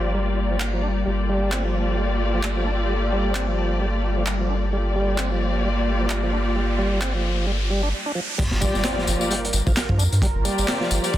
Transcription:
Already playing: sub bass G1, tonewheel organ F3, analog synth pad G3 F4 A#4, string section A#3 F4 G4 D5
0.14 tonewheel organ G3
0.51 tonewheel organ F3
0.60 clap
0.73 tonewheel organ F3
0.83 tonewheel organ D4
1.06 sub bass G1, tonewheel organ G3, string section A#3 F4 G4 D5, analog synth pad A4
1.29 tonewheel organ G3
1.52 tonewheel organ C4, clap
1.65 tonewheel organ F3
1.98 tonewheel organ G3
2.34 tonewheel organ F3
2.43 clap
2.57 tonewheel organ F3
2.66 tonewheel organ D4
2.89 tonewheel organ G3
3.12 tonewheel organ G3
3.35 tonewheel organ C4, clap
3.48 tonewheel organ F3
3.81 tonewheel organ G3
4.17 tonewheel organ F3
4.26 clap
4.40 tonewheel organ F3
4.50 tonewheel organ D4
4.72 tonewheel organ G3, string section A#3 F4 G4 D5, riser
4.96 tonewheel organ G3
5.18 tonewheel organ C4, clap
5.32 tonewheel organ F3
5.64 tonewheel organ G3
6.00 tonewheel organ F3
6.10 clap
6.23 tonewheel organ F3
6.33 tonewheel organ D4
6.56 tonewheel organ G3
6.78 tonewheel organ G3
7.01 tonewheel organ C4, clap
7.15 tonewheel organ F3
7.47 tonewheel organ G3
7.70 tonewheel organ G3
7.83 tonewheel organ D4
8.06 tonewheel organ D4
8.15 tonewheel organ F3
8.38 sub bass G1, tonewheel organ G3, analog synth pad G3 F4 A#4, kick, closed hi-hat, crash, tambourine, impact
8.51 sub bass G1, snare
8.61 tonewheel organ G3, string section A#3 F4 G4 D5, kick, closed hi-hat, tambourine
8.74 sub bass G1, snare, tambourine
8.84 tonewheel organ C4, snare, clap, closed hi-hat
8.97 tonewheel organ F3, snare
9.07 sub bass G1, closed hi-hat, tambourine
9.20 string section A#3 F4 G4 D5, tambourine
9.30 tonewheel organ G3, closed hi-hat, tambourine
9.45 closed hi-hat
9.53 sub bass G1, closed hi-hat, tambourine
9.66 sub bass G1, tonewheel organ F3, kick, tambourine
9.76 snare, clap, closed hi-hat, tambourine
9.89 sub bass G2, tonewheel organ F3, kick
9.98 sub bass F2, tonewheel organ D4, closed hi-hat, tambourine
10.12 sub bass G2, closed hi-hat, tambourine
10.22 sub bass G1, tonewheel organ G3, kick, closed hi-hat, tambourine
10.35 sub bass G1
10.45 tonewheel organ G3, string section A#3 F4 G4 D5, closed hi-hat, tambourine
10.58 sub bass G1, closed hi-hat, tambourine
10.68 tonewheel organ C4, snare, clap, closed hi-hat
10.80 tonewheel organ F3, snare
10.91 sub bass G1, closed hi-hat, tambourine
11.04 string section A#3 F4 G4 D5, closed hi-hat, tambourine
11.13 tonewheel organ G3, kick, closed hi-hat, tambourine

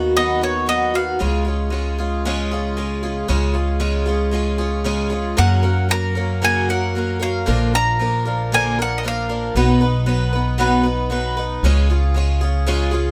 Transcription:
Already playing: upright bass D#2, harmonium D#3 B3 F#4, twelve-string acoustic guitar B3 D#4 F#4, mandolin F5
0.16 twelve-string acoustic guitar D#3 F#3 B3 D#4 F#4, mandolin D#5
0.41 twelve-string acoustic guitar B3 D#4 F#4, mandolin C#5
0.66 twelve-string acoustic guitar F#3 B3 D#4 F#4, mandolin D#5
0.94 twelve-string acoustic guitar B3 D#4 F#4, mandolin F5
1.19 upright bass C#2, twelve-string acoustic guitar C#3 G#3 C#4 F4 G#4, harmonium C#3 G#3 F4
1.45 twelve-string acoustic guitar C#4 F4 G#4
1.70 twelve-string acoustic guitar G#3 C#4 F4 G#4
1.98 twelve-string acoustic guitar C#4 F4 G#4
2.25 twelve-string acoustic guitar C#3 G#3 C#4 F4 G#4
2.51 twelve-string acoustic guitar C#4 F4 G#4
2.77 twelve-string acoustic guitar G#3 C#4 F4 G#4
3.03 twelve-string acoustic guitar C#4 F4 G#4
3.28 upright bass C#2, twelve-string acoustic guitar C#3 G#3 C#4 F4 G#4, harmonium C#3 G#3 F4
3.53 twelve-string acoustic guitar C#4 F4 G#4
3.79 twelve-string acoustic guitar C#3 G#3 C#4 F4 G#4
4.06 twelve-string acoustic guitar C#4 F4 G#4
4.31 twelve-string acoustic guitar G#3 C#4 F4 G#4
4.58 twelve-string acoustic guitar C#4 F4 G#4
4.84 twelve-string acoustic guitar C#3 G#3 C#4 F4 G#4
5.10 twelve-string acoustic guitar C#4 F4 G#4
5.37 twelve-string acoustic guitar F#2 C#3 F#3 A#3 C#4 A#4, upright bass F#2, mandolin F#5
5.63 twelve-string acoustic guitar F#3 A#3 C#4 A#4
5.89 twelve-string acoustic guitar F#3 A#3 C#4 A#4, mandolin A#5
6.15 twelve-string acoustic guitar F#3 A#3 C#4 A#4
6.42 twelve-string acoustic guitar F#2 C#3 F#3 A#3 C#4 A#4, mandolin G#5
6.69 twelve-string acoustic guitar F#3 A#3 C#4 A#4, mandolin F#5
6.95 twelve-string acoustic guitar F#3 A#3 C#4 A#4
7.20 twelve-string acoustic guitar F#3 A#3 C#4 A#4, mandolin F5
7.46 upright bass A#1, twelve-string acoustic guitar A#2 D3 F3 A#3 D4 A#4
7.74 twelve-string acoustic guitar F3 A#3 D4 A#4, mandolin A#5
7.99 twelve-string acoustic guitar F3 A#3 D4 A#4
8.25 twelve-string acoustic guitar F3 A#3 D4 A#4
8.52 twelve-string acoustic guitar A#2 D3 F3 A#3 D4 A#4, mandolin G#5
8.79 twelve-string acoustic guitar F3 A#3 D4 A#4, mandolin F#5
8.98 mandolin D#5
9.03 twelve-string acoustic guitar F3 A#3 D4 A#4
9.08 mandolin F5
9.29 twelve-string acoustic guitar F3 A#3 D4 A#4
9.55 upright bass B1, twelve-string acoustic guitar B2 F#3 B3 D#4 B4
9.81 twelve-string acoustic guitar B3 D#4 B4
10.06 twelve-string acoustic guitar F#3 B3 D#4 B4
10.33 twelve-string acoustic guitar B3 D#4 B4
10.58 twelve-string acoustic guitar B2 F#3 B3 D#4 B4
10.83 twelve-string acoustic guitar B3 D#4 B4
11.10 twelve-string acoustic guitar F#3 B3 D#4 B4
11.37 twelve-string acoustic guitar B3 D#4 B4
11.63 upright bass C#2, twelve-string acoustic guitar C#3 G#3 C#4 F4 G#4
11.90 twelve-string acoustic guitar C#4 F4 G#4
12.14 twelve-string acoustic guitar G#3 C#4 F4 G#4
12.41 twelve-string acoustic guitar C#4 F4 G#4
12.67 twelve-string acoustic guitar C#3 G#3 C#4 F4 G#4
12.91 twelve-string acoustic guitar C#4 F4 G#4

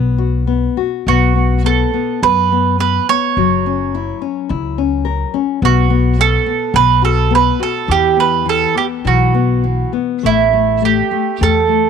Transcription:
Already playing: upright bass B1, nylon-string guitar B3
0.18 nylon-string guitar F#4
0.47 nylon-string guitar B3
0.77 nylon-string guitar F#4
1.07 upright bass B1, nylon-string guitar B3, mandolin F#4
1.35 nylon-string guitar B3
1.64 nylon-string guitar B3, mandolin A4
1.94 nylon-string guitar B3
2.23 upright bass F#2, nylon-string guitar B3, mandolin B4
2.52 nylon-string guitar B3
2.79 nylon-string guitar B3, mandolin B4
3.09 nylon-string guitar B3, mandolin C#5
3.37 upright bass F#1, nylon-string guitar F#3
3.66 nylon-string guitar C#4
3.95 nylon-string guitar E4
4.22 nylon-string guitar C#4
4.49 upright bass C#2, nylon-string guitar E4
4.78 nylon-string guitar C#4
5.05 nylon-string guitar A#4
5.34 nylon-string guitar C#4
5.62 upright bass B1, nylon-string guitar B3, mandolin F#4
5.90 nylon-string guitar B3
6.19 nylon-string guitar B3, mandolin A4
6.46 nylon-string guitar B3
6.74 upright bass B1, nylon-string guitar B3, mandolin B4
7.02 nylon-string guitar F#4, mandolin A4
7.31 nylon-string guitar B3
7.35 mandolin B4
7.60 nylon-string guitar F#4, mandolin A4
7.88 upright bass E2, nylon-string guitar E3, mandolin G4
8.16 nylon-string guitar B3, mandolin B4
8.46 nylon-string guitar E3, mandolin A4
8.75 nylon-string guitar B3, mandolin G4
9.05 upright bass B1, nylon-string guitar E3, mandolin F#4
9.34 nylon-string guitar B3
9.64 nylon-string guitar E3
9.93 nylon-string guitar B3
10.23 upright bass A1, nylon-string guitar A3, mandolin E4
10.53 nylon-string guitar A3
10.82 nylon-string guitar A3, mandolin G4
11.11 nylon-string guitar A3
11.41 upright bass E2, nylon-string guitar A3, mandolin A4
11.69 nylon-string guitar A3

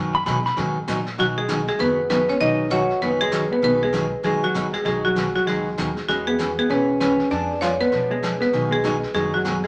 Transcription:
Already playing: upright bass F#2, steel-string acoustic guitar B2 D#3 F#3 B3 D#4 G#4
0.15 electric slide guitar B5
0.26 steel-string acoustic guitar B2 D#3 F#3 B3 D#4 G#4, upright bass B2, electric slide guitar B5, snare, hi-hat pedal
0.45 electric slide guitar B5, snare
0.57 upright bass G#2, steel-string acoustic guitar B2 D#3 F#3 B3 D#4 G#4, brush sweep, snare
0.88 upright bass A#2, steel-string acoustic guitar B2 D#3 F#3 B3 D#4 G#4, snare, hi-hat pedal
1.06 snare
1.18 upright bass B1, steel-string acoustic guitar B2 D#3 F#3 B3 D#4 G#4, hollow-body jazz guitar F#3, marimba F#4, brush sweep, snare
1.38 hollow-body jazz guitar G#3, marimba G#4
1.48 steel-string acoustic guitar B2 D#3 F#3 B3 D#4 G#4, snare, hi-hat pedal
1.67 hollow-body jazz guitar G#3, marimba G#4, snare
1.79 upright bass F#1, steel-string acoustic guitar B2 D#3 F#3 B3 D#4 G#4, hollow-body jazz guitar B3, marimba B4, brush sweep, snare
2.09 steel-string acoustic guitar B2 D#3 F#3 B3 D#4 G#4, hollow-body jazz guitar B3, marimba B4, snare, hi-hat pedal
2.28 hollow-body jazz guitar C#4, marimba C#5, snare
2.40 upright bass B1, steel-string acoustic guitar B2 D#3 F#3 B3 D#4 G#4, hollow-body jazz guitar D#4, marimba D#5, brush sweep, snare
2.70 steel-string acoustic guitar B2 D#3 F#3 B3 D#4 G#4, hollow-body jazz guitar F#4, marimba C#5, snare, hi-hat pedal
2.90 snare
3.01 upright bass F#1, steel-string acoustic guitar B2 D#3 F#3 B3 D#4 G#4, hollow-body jazz guitar B3, marimba B4, brush sweep, snare
3.21 hollow-body jazz guitar G#3, marimba G#4
3.32 steel-string acoustic guitar B2 D#3 F#3 B3 D#4 G#4, snare, hi-hat pedal
3.52 hollow-body jazz guitar B3, marimba B4
3.62 upright bass B1, steel-string acoustic guitar B2 D#3 F#3 B3 D#4 G#4, hollow-body jazz guitar B3, marimba B4, brush sweep, snare
3.83 hollow-body jazz guitar G#3, marimba G#4
3.93 steel-string acoustic guitar B2 D#3 F#3 B3 D#4 G#4, snare, hi-hat pedal
4.23 upright bass F#1, steel-string acoustic guitar B2 D#3 F#3 B3 D#4 G#4, hollow-body jazz guitar G#3, marimba G#4, brush sweep, snare
4.44 hollow-body jazz guitar F#3, marimba F#4
4.54 steel-string acoustic guitar B2 D#3 F#3 B3 D#4 G#4, snare, hi-hat pedal
4.73 hollow-body jazz guitar G#3, marimba G#4, snare
4.85 upright bass B1, steel-string acoustic guitar B2 D#3 F#3 B3 D#4 G#4, hollow-body jazz guitar G#3, marimba G#4, brush sweep, snare
5.05 hollow-body jazz guitar F#3, marimba F#4
5.16 steel-string acoustic guitar B2 D#3 F#3 B3 D#4 G#4, snare, hi-hat pedal
5.35 hollow-body jazz guitar F#3, marimba F#4, snare
5.47 upright bass C#2, steel-string acoustic guitar B2 D#3 F#3 B3 D#4 G#4, hollow-body jazz guitar G#3, marimba G#4, brush sweep, snare
5.78 upright bass D#2, steel-string acoustic guitar B2 D#3 F#3 B3 D#4 G#4, snare, hi-hat pedal
5.97 snare
6.08 upright bass E2, steel-string acoustic guitar E3 B3 C#4 G#4, hollow-body jazz guitar G#3, marimba F#4, brush sweep, snare
6.27 hollow-body jazz guitar B3, marimba G#4
6.39 steel-string acoustic guitar E3 B3 C#4 G#4, snare, hi-hat pedal
6.59 hollow-body jazz guitar B3, marimba G#4
6.69 upright bass B1, steel-string acoustic guitar E3 B3 C#4 G#4, hollow-body jazz guitar C#4, marimba B4, brush sweep, snare
7.00 steel-string acoustic guitar E3 B3 C#4 G#4, hollow-body jazz guitar C#4, marimba B4, snare, hi-hat pedal
7.19 snare
7.30 upright bass F2, steel-string acoustic guitar F3 B3 D4 G#4, hollow-body jazz guitar D4, marimba D5, brush sweep, snare
7.61 steel-string acoustic guitar F3 B3 D4 G#4, hollow-body jazz guitar F4, marimba C#5, snare, hi-hat pedal
7.81 hollow-body jazz guitar B3, marimba B4, snare
7.92 upright bass B2, steel-string acoustic guitar F3 B3 D4 G#4, brush sweep, snare
8.11 hollow-body jazz guitar G#3, marimba G#4
8.23 steel-string acoustic guitar F3 B3 D4 G#4, snare, hi-hat pedal
8.41 hollow-body jazz guitar B3, marimba B4, snare
8.53 upright bass B1, steel-string acoustic guitar B2 D#3 F#3 B3 D#4 G#4, brush sweep, snare
8.71 hollow-body jazz guitar G#3, marimba G#4
8.84 steel-string acoustic guitar B2 D#3 F#3 B3 D#4 G#4, snare, hi-hat pedal
9.03 snare
9.14 upright bass F#1, steel-string acoustic guitar B2 D#3 F#3 B3 D#4 G#4, hollow-body jazz guitar G#3, marimba G#4, brush sweep, snare
9.34 hollow-body jazz guitar F#3, marimba F#4
9.44 steel-string acoustic guitar B2 D#3 F#3 B3 D#4 G#4, snare, hi-hat pedal
9.64 marimba G#4, snare

